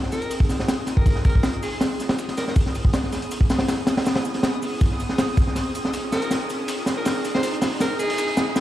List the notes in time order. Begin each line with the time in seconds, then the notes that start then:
Already playing: C4 D#4 F4 G#4 D#6, riser
0.03 snare
0.12 A#4, snare, open hi-hat, shaker
0.22 closed hi-hat
0.31 open hi-hat, shaker
0.40 kick, snare
0.49 snare, open hi-hat, shaker
0.60 snare
0.68 snare, open hi-hat, shaker
0.87 snare, open hi-hat, shaker
0.97 A#4, kick
1.06 kick, open hi-hat, shaker
1.15 snare
1.25 A#4, kick, open hi-hat, shaker
1.35 kick
1.43 snare, open hi-hat, shaker
1.53 closed hi-hat
1.62 G#4, open hi-hat, shaker
1.72 G#4
1.81 snare, open hi-hat, shaker
2.00 snare, open hi-hat, shaker
2.09 snare, open hi-hat
2.19 snare, shaker
2.28 snare, open hi-hat
2.37 A#4, snare, open hi-hat, shaker
2.47 A#4, snare
2.56 B3 C#4 E4 G#4, kick, open hi-hat, shaker
2.66 snare
2.75 open hi-hat, shaker
2.85 kick
2.93 snare, open hi-hat, shaker
3.04 snare
3.12 snare, open hi-hat, shaker
3.22 closed hi-hat
3.31 open hi-hat, shaker
3.41 kick, snare
3.50 snare, open hi-hat, shaker
3.59 snare, open hi-hat
3.68 snare, open hi-hat, shaker
3.87 snare, open hi-hat, shaker
3.97 snare, open hi-hat
4.05 snare, open hi-hat, shaker
4.15 snare, open hi-hat
4.25 shaker
4.34 snare, open hi-hat
4.43 snare, open hi-hat, shaker
4.53 closed hi-hat
4.62 open hi-hat, shaker
4.81 kick, open hi-hat, shaker
4.92 snare
5.00 open hi-hat, shaker
5.09 snare
5.18 snare, open hi-hat, shaker
5.37 kick, open hi-hat, shaker
5.47 snare
5.55 C4 D#4 F4, snare, open hi-hat, shaker
5.75 open hi-hat, shaker
5.85 snare
5.94 snare, open hi-hat, shaker
6.12 A#4, snare, open hi-hat, shaker
6.22 closed hi-hat
6.31 snare, open hi-hat, shaker
6.41 snare
6.50 open hi-hat, shaker
6.68 snare, open hi-hat, shaker
6.86 snare, open hi-hat, shaker
6.97 A#4
7.05 snare, open hi-hat, shaker
7.25 open hi-hat, shaker
7.34 C5, snare
7.43 C5, snare, open hi-hat, shaker
7.53 closed hi-hat
7.61 snare, open hi-hat, shaker
7.80 A#4, snare, open hi-hat, shaker
7.99 G#4, open hi-hat, shaker
8.10 open hi-hat
8.18 snare, shaker
8.28 open hi-hat
8.37 snare, open hi-hat, shaker
8.56 B3 C#4 E4, snare, open hi-hat, shaker